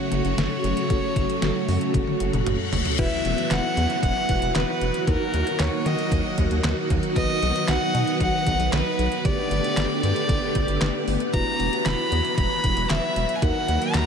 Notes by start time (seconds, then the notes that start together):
Already playing: C#3 F#3 A3 C#4 F#4 A4 C#5
0.12 F#1, closed hi-hat
0.25 F#1, closed hi-hat
0.38 F#1, snare, closed hi-hat
0.64 F#1, closed hi-hat
0.77 closed hi-hat
0.90 F#1 C#4 F#4 A4, kick, closed hi-hat
1.16 F#1, kick, closed hi-hat
1.30 closed hi-hat
1.42 F#1, snare, closed hi-hat
1.68 F#2, open hi-hat
1.81 closed hi-hat
1.94 F#1, kick, closed hi-hat, high tom, reverse cymbal
2.08 high tom
2.20 F#1, closed hi-hat
2.33 F#1, closed hi-hat, mid tom
2.46 F#1, closed hi-hat, mid tom
2.73 F#1, floor tom, open hi-hat
2.85 closed hi-hat, floor tom
2.99 E1 E3 F#3 B3 E4 F#4 B4 E5, kick, closed hi-hat, crash, downlifter
3.25 E1, closed hi-hat
3.38 closed hi-hat
3.51 E1 F#5, snare, clap, closed hi-hat
3.77 E2, closed hi-hat
3.90 closed hi-hat
4.03 E1 F#5, kick, closed hi-hat
4.29 E1 E4 F#4 B4, kick, closed hi-hat
4.42 E1, closed hi-hat
4.55 E1 B4, snare, clap, closed hi-hat
4.81 E1, closed hi-hat
4.94 closed hi-hat
5.07 D#2 D#3 F#3 A#3 D#4 F#4 A#4, kick, closed hi-hat
5.34 D#2, closed hi-hat
5.47 closed hi-hat
5.60 D#2 C#5, snare, clap, closed hi-hat
5.86 D#3 D#5, closed hi-hat
5.99 closed hi-hat
6.12 D#2, kick, closed hi-hat
6.38 D#2, kick, closed hi-hat
6.51 D#2, closed hi-hat
6.64 D#2, snare, clap, closed hi-hat
6.90 D#2, kick, closed hi-hat
7.03 closed hi-hat
7.16 B1 B3 D#4 F#4 B4 D#5, kick, closed hi-hat
7.42 B1, closed hi-hat
7.56 closed hi-hat
7.68 B1 F#5, snare, clap, closed hi-hat
7.94 B2, closed hi-hat
8.07 closed hi-hat
8.20 B1 F#5, kick, closed hi-hat
8.47 B1, kick, closed hi-hat
8.60 B1, closed hi-hat
8.73 B1 B4, snare, clap, closed hi-hat
8.99 B1, closed hi-hat
9.12 closed hi-hat
9.25 G1 D3 A3 B3 D4 G4 B4 D5, kick, closed hi-hat
9.51 G1, closed hi-hat
9.64 closed hi-hat
9.77 G1, snare, clap, closed hi-hat
10.03 G2 D5, closed hi-hat
10.16 closed hi-hat
10.29 G1, kick, closed hi-hat
10.55 G1, kick, closed hi-hat
10.68 G1, closed hi-hat
10.81 G1 D4 G4 B4, snare, clap, closed hi-hat
11.08 G1, open hi-hat
11.20 closed hi-hat
11.33 E1 E3 F#3 E4 F#4 B4 A#5, kick, closed hi-hat
11.60 E1, closed hi-hat
11.73 closed hi-hat
11.86 E1 B5, snare, clap, closed hi-hat
12.12 E2, closed hi-hat
12.25 closed hi-hat
12.38 E1 B5, kick, closed hi-hat
12.64 E1, kick, closed hi-hat
12.77 E1, closed hi-hat
12.90 E1 E5, snare, clap, closed hi-hat
13.16 E1, closed hi-hat
13.29 closed hi-hat
13.35 G#5
13.42 D#2 D#3 A#3 D#4 F#4 A#4 F#5, kick, closed hi-hat
13.68 D#2, closed hi-hat
13.82 closed hi-hat
13.94 D#2 A#5, snare, clap, closed hi-hat